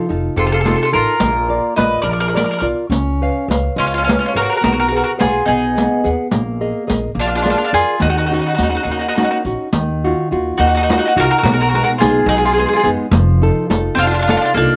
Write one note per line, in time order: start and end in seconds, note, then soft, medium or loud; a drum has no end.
0.09 0.27 F1 medium
0.09 0.55 D#4 soft
0.09 0.55 F4 soft
0.09 0.55 A4 medium
0.36 0.74 F1 medium
0.36 0.92 C3 medium
0.36 0.45 F4 medium
0.36 0.44 A4 medium
0.46 0.53 F4 soft
0.46 0.51 A4 medium
0.52 0.60 F4 medium
0.52 0.59 A4 medium
0.61 0.70 F4 soft
0.61 0.66 A4 medium
0.66 0.91 D#4 medium
0.66 0.91 F4 soft
0.66 0.74 A4 medium
0.66 0.91 A4 medium
0.66 riq medium
0.71 0.76 F4 soft
0.76 0.83 F4 soft
0.76 0.81 A4 medium
0.82 0.90 F4 medium
0.82 0.89 A4 medium
0.92 1.02 A1 medium
0.92 1.14 D#4 soft
0.92 1.14 F4 soft
0.92 1.74 F4 medium
0.92 1.14 A4 soft
0.92 1.73 A#4 medium
1.20 1.57 A#1 loud
1.20 1.75 A#3 medium
1.20 riq medium
1.48 1.76 F4 soft
1.48 1.76 A#4 soft
1.48 1.76 D5 medium
1.76 1.95 A#1 medium
1.76 2.23 F4 soft
1.76 2.24 A#4 soft
1.76 2.03 B4 medium
1.76 2.24 D5 soft
1.76 2.01 D#5 medium
1.76 riq medium
2.02 2.42 A#1 medium
2.02 2.61 F3 medium
2.02 2.10 A#4 medium
2.02 2.10 D5 medium
2.11 2.19 A#4 soft
2.11 2.19 D5 medium
2.20 2.27 A#4 medium
2.20 2.28 D5 medium
2.28 2.34 A#4 soft
2.28 2.35 D5 soft
2.34 2.61 F4 soft
2.34 2.61 A#4 soft
2.34 2.43 A#4 soft
2.34 2.62 D5 soft
2.34 2.43 D5 medium
2.34 riq medium
2.44 2.49 A#4 soft
2.44 2.51 D5 soft
2.51 2.57 A#4 medium
2.51 2.59 D5 medium
2.58 2.71 B1 medium
2.58 2.85 F4 soft
2.58 2.65 A#4 soft
2.58 2.66 D5 medium
2.63 2.85 A#4 soft
2.63 2.85 D5 soft
2.90 3.28 C#2 medium
2.90 3.48 C#4 medium
2.90 riq medium
3.22 3.49 B4 soft
3.22 3.49 C#5 soft
3.22 3.50 F5 medium
3.48 3.67 C#2 medium
3.48 3.96 B4 soft
3.48 3.96 C#5 soft
3.48 3.97 F5 soft
3.48 riq medium
3.76 4.14 C#2 medium
3.76 4.33 G#3 medium
3.76 3.85 C#4 medium
3.76 3.85 F4 medium
3.87 3.94 C#4 soft
3.87 3.93 F4 medium
3.94 4.03 C#4 medium
3.94 4.02 F4 medium
4.04 4.10 C#4 medium
4.04 4.08 F4 medium
4.04 4.33 B4 soft
4.04 4.34 C#5 soft
4.08 4.17 F4 medium
4.08 4.33 F5 soft
4.08 riq medium
4.13 4.18 C#4 soft
4.19 4.25 C#4 soft
4.19 4.25 F4 medium
4.26 4.33 C#4 medium
4.26 4.32 F4 medium
4.34 4.44 G#1 medium
4.34 4.43 F#4 medium
4.34 4.40 A#4 loud
4.34 4.56 B4 soft
4.34 4.57 C#5 soft
4.34 4.56 F5 medium
4.34 riq soft
4.42 4.50 F#4 medium
4.42 4.48 A#4 medium
4.49 4.56 F#4 medium
4.49 4.55 A#4 medium
4.56 4.63 F#4 medium
4.56 4.62 A#4 medium
4.61 5.01 B1 loud
4.61 4.92 B3 medium
4.61 4.71 F#4 medium
4.61 4.71 A#4 medium
4.61 riq medium
4.72 4.78 F#4 soft
4.72 4.78 A#4 soft
4.79 4.87 F#4 medium
4.79 4.87 A#4 medium
4.88 4.95 F#4 soft
4.88 4.95 A#4 medium
4.92 5.16 G#4 soft
4.92 5.17 B4 soft
4.92 5.18 F#5 soft
4.96 5.02 F#4 medium
4.96 5.03 A#4 medium
5.04 5.10 F#4 medium
5.04 5.10 A#4 medium
5.18 5.45 F4 medium
5.18 5.65 G#4 soft
5.18 5.46 G#4 medium
5.18 5.65 B4 soft
5.18 5.66 F#5 medium
5.18 riq medium
5.22 5.39 B1 medium
5.46 5.86 B1 medium
5.46 6.03 B3 medium
5.46 6.07 D#4 medium
5.46 6.08 G#4 medium
5.75 6.03 G#4 soft
5.75 6.03 B4 soft
5.75 6.04 F#5 medium
5.75 riq medium
6.04 6.14 D#2 medium
6.04 6.26 G#4 soft
6.04 6.27 B4 soft
6.04 6.27 F#5 medium
6.04 riq soft
6.31 6.70 A#1 medium
6.31 6.87 A#3 medium
6.31 riq medium
6.61 6.86 G#4 soft
6.61 6.87 A#4 soft
6.61 6.86 D#5 medium
6.87 7.07 A#1 medium
6.87 7.10 G#4 soft
6.87 7.10 A#4 soft
6.87 7.10 D#5 soft
6.87 riq medium
7.15 7.53 A#1 medium
7.15 7.71 A#3 medium
7.19 7.25 D4 medium
7.19 7.26 F4 medium
7.27 7.34 D4 soft
7.27 7.34 F4 medium
7.35 7.42 D4 medium
7.35 7.41 F4 medium
7.42 7.49 D4 medium
7.42 7.49 F4 medium
7.42 7.72 G#4 soft
7.42 7.73 D5 medium
7.42 riq medium
7.47 7.56 D4 medium
7.47 7.56 F4 medium
7.47 7.72 A#4 soft
7.57 7.63 D4 medium
7.57 7.63 F4 medium
7.64 7.70 D4 medium
7.64 7.71 F4 medium
7.73 7.82 F2 medium
7.73 7.99 F4 medium
7.73 7.95 G#4 medium
7.73 7.99 G#4 loud
7.73 7.95 A#4 soft
7.73 7.95 D5 medium
7.73 riq soft
8.00 8.38 D#2 loud
8.00 8.56 D#3 medium
8.00 8.08 D#4 medium
8.00 8.08 F#4 medium
8.00 riq medium
8.09 8.16 D#4 medium
8.09 8.16 F#4 medium
8.17 8.25 D#4 soft
8.17 8.24 F#4 medium
8.26 8.32 D#4 soft
8.26 8.33 F#4 medium
8.31 8.57 C#4 soft
8.31 8.57 D#4 soft
8.31 8.39 D#4 soft
8.31 8.57 F#4 medium
8.31 8.38 F#4 soft
8.31 riq soft
8.39 8.47 D#4 soft
8.39 8.45 F#4 soft
8.47 8.54 D#4 soft
8.47 8.53 F#4 medium
8.55 9.05 C#4 soft
8.55 8.62 D#4 soft
8.55 9.05 D#4 soft
8.55 8.61 F#4 medium
8.55 riq medium
8.59 8.77 D#2 medium
8.59 9.05 F#4 soft
8.63 8.69 D#4 medium
8.63 8.68 F#4 soft
8.69 8.74 D#4 soft
8.69 8.76 F#4 soft
8.75 8.82 D#4 soft
8.75 8.82 F#4 medium
8.83 9.24 D#2 medium
8.83 9.43 A#3 medium
8.83 8.90 D#4 soft
8.83 8.90 F#4 soft
8.91 8.98 D#4 soft
8.91 8.99 F#4 medium
8.99 9.06 D#4 soft
8.99 9.07 F#4 soft
9.08 9.14 D#4 medium
9.08 9.15 F#4 medium
9.15 9.44 C#4 soft
9.15 9.22 D#4 soft
9.15 9.44 D#4 soft
9.15 9.45 F#4 medium
9.15 9.23 F#4 medium
9.15 riq medium
9.23 9.29 D#4 soft
9.23 9.29 F#4 medium
9.31 9.37 D#4 soft
9.31 9.37 F#4 soft
9.45 9.54 A#1 medium
9.45 9.67 C#4 soft
9.45 9.67 D#4 soft
9.45 9.68 F#4 medium
9.45 riq soft
9.73 10.11 D#2 medium
9.73 10.30 D#3 medium
9.73 riq medium
10.04 10.30 D#4 soft
10.04 10.30 F4 soft
10.04 10.31 F#4 medium
10.31 10.50 D#2 medium
10.31 10.78 D#4 soft
10.31 10.78 F4 soft
10.31 10.78 F#4 medium
10.58 10.97 D#2 medium
10.58 11.16 A#3 medium
10.58 10.67 D#4 medium
10.58 10.65 F#4 medium
10.66 10.75 D#4 soft
10.66 10.73 F#4 medium
10.74 10.82 D#4 medium
10.74 10.82 F#4 medium
10.83 10.90 D#4 medium
10.83 10.91 F#4 medium
10.90 11.15 D#4 medium
10.90 10.96 D#4 medium
10.90 11.15 F4 medium
10.90 11.15 F#4 medium
10.90 10.98 F#4 medium
10.90 riq medium
10.98 11.04 D#4 medium
10.98 11.06 F#4 medium
11.05 11.12 D#4 medium
11.05 11.14 F#4 medium
11.16 11.25 C2 medium
11.16 11.38 D#4 medium
11.16 11.38 F4 soft
11.16 11.38 F#4 medium
11.16 11.23 F#4 loud
11.16 11.22 A#4 loud
11.16 riq soft
11.24 11.29 F#4 medium
11.24 11.30 A#4 medium
11.30 11.37 F#4 medium
11.30 11.37 A#4 medium
11.38 11.42 F#4 medium
11.38 11.42 A#4 medium
11.43 11.80 B1 loud
11.43 11.99 B2 medium
11.43 11.50 F#4 medium
11.43 11.52 A#4 medium
11.43 riq medium
11.51 11.59 F#4 medium
11.51 11.60 A#4 medium
11.60 11.67 F#4 medium
11.60 11.68 A#4 medium
11.69 11.74 F#4 medium
11.69 11.74 A#4 medium
11.73 11.99 G#3 medium
11.73 11.99 B3 soft
11.73 12.00 D#4 medium
11.73 11.82 F#4 medium
11.73 11.82 A#4 medium
11.83 11.90 F#4 medium
11.83 11.90 A#4 medium
11.98 12.18 B1 medium
11.98 12.46 G#3 medium
11.98 12.46 B3 soft
11.98 12.47 D#4 medium
11.98 12.24 F4 medium
11.98 12.26 G#4 medium
11.98 riq medium
12.26 12.64 B1 loud
12.26 12.83 F#3 medium
12.26 12.36 D#4 medium
12.26 12.36 G#4 medium
12.37 12.44 F4 soft
12.37 12.44 G#4 medium
12.45 12.50 F4 medium
12.45 12.52 G#4 medium
12.51 12.57 F4 medium
12.51 12.58 G#4 medium
12.57 12.82 G#3 medium
12.57 12.82 B3 soft
12.57 12.83 D#4 medium
12.57 12.64 F4 medium
12.57 12.66 G#4 medium
12.66 12.72 F4 soft
12.66 12.74 G#4 medium
12.73 12.78 F4 medium
12.73 12.82 G#4 medium
12.79 12.87 F4 medium
12.83 12.94 F#2 medium
12.83 13.06 G#3 medium
12.83 13.06 B3 medium
12.83 13.06 D#4 medium
12.83 12.89 G#4 medium
12.83 riq soft
13.11 13.49 F1 loud
13.11 13.68 F3 medium
13.11 riq medium
13.42 13.69 D#4 medium
13.42 13.68 F4 medium
13.42 13.69 A4 medium
13.70 13.88 F1 medium
13.70 14.17 D#4 medium
13.70 14.17 F4 medium
13.70 14.17 A4 medium
13.70 riq medium
13.95 14.35 F1 medium
13.95 14.55 C3 medium
13.95 14.04 C4 medium
13.95 14.06 F4 loud
14.02 14.10 D4 medium
14.07 14.18 D4 medium
14.07 14.13 F4 medium
14.14 14.21 F4 medium
14.19 14.26 D4 medium
14.19 14.29 F4 medium
14.28 14.35 D4 medium
14.28 14.56 D#4 medium
14.28 14.56 F4 soft
14.28 14.36 F4 medium
14.28 14.57 A4 medium
14.28 riq medium
14.37 14.40 D4 medium
14.37 14.44 F4 medium
14.41 14.50 D4 medium
14.41 14.52 F4 medium
14.54 14.64 C2 loud
14.54 14.76 A#3 medium
14.54 14.76 D4 loud
14.54 14.76 D#4 medium
14.54 14.76 F4 medium
14.54 14.76 A4 medium
14.54 riq soft